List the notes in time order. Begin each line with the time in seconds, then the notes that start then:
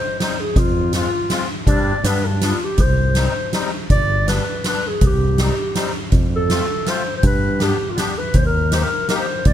Already playing: C5
0.19 G3 C4 D#4 C5, snare, closed hi-hat
0.40 G#4
0.56 F2 F4, kick, closed hi-hat
0.93 G#3 C4 F4, snare, closed hi-hat
1.29 G#3 C4 F4, snare, closed hi-hat
1.67 G2 G3 C4 D4 D5, kick, closed hi-hat
2.04 G2 G3 B3 D4 B4, snare, closed hi-hat
2.25 D4
2.41 G3 B3 D4 F4, snare, closed hi-hat
2.64 G4
2.78 C2 C5, kick, closed hi-hat
3.15 G3 C4 D#4, snare, closed hi-hat
3.53 G3 C4 D#4, snare, closed hi-hat
3.90 G1 D5, kick, closed hi-hat
4.26 G3 B3 D4 B4, snare, closed hi-hat
4.64 G3 B3 D4 B4, snare, closed hi-hat
4.87 G#4
5.01 C2, kick, closed hi-hat
5.06 G4
5.38 G3 C4 D#4 G4, snare, closed hi-hat
5.74 G3 C4 D#4, snare, closed hi-hat
6.12 F2, kick, closed hi-hat
6.36 A4
6.50 A3 C4 F4, snare, closed hi-hat
6.85 A3 C4 F4 C5, snare, closed hi-hat
7.16 C5
7.23 G2 B4, kick, closed hi-hat
7.59 B3 D4 G4, snare, closed hi-hat
7.63 G4
7.90 F4
7.95 B3 D4 G4, snare, closed hi-hat
7.99 G4
8.18 B4
8.34 D#2 C5, kick, closed hi-hat
8.46 A#4
8.70 A#3 D#4 G4 C5, snare, closed hi-hat
8.83 A#4
9.08 A#3 D#4 G4 A#4, snare, closed hi-hat
9.19 C5
9.45 D2 D5, kick, closed hi-hat